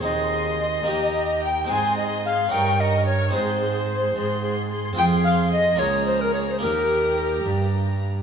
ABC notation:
X:1
M:6/8
L:1/16
Q:3/8=73
K:Ab
V:1 name="Violin section"
c'6 b4 z2 | c'2 c'2 c'2 d'2 d'2 d'2 | c'2 c'2 c'2 c'2 c'2 c'2 | c'6 b6 |
b8- b2 z2 |]
V:2 name="Recorder"
e8- e2 g2 | a2 e2 f2 g2 e2 d2 | c8- c z3 | g2 f2 e2 d2 c B d c |
B6 z6 |]
V:3 name="Violin section"
e8- e2 g2 | a2 e2 f2 g2 e2 d2 | c8- c z3 | g2 f2 e2 d2 c B d c |
B6 z6 |]
V:4 name="Viola section"
A6 G4 z2 | A2 A2 A2 B2 B2 B2 | A2 A2 A2 A2 A2 A2 | A6 A6 |
G8- G2 z2 |]
V:5 name="Harpsichord"
[CEA]6 [B,EG]6 | [A,CEA]6 [DEB]6 | [A,CEA]12 | [CFA]6 [B,FA]6 |
[B,EG]12 |]
V:6 name="Harpsichord" clef=bass
E,,6 E,,6 | A,,6 G,,6 | A,,6 A,,6 | F,,6 D,,6 |
E,,6 G,,6 |]
V:7 name="Cello section" clef=bass
E,,6 E,,6 | A,,6 G,,6 | A,,6 A,,6 | F,,6 D,,6 |
E,,6 G,,6 |]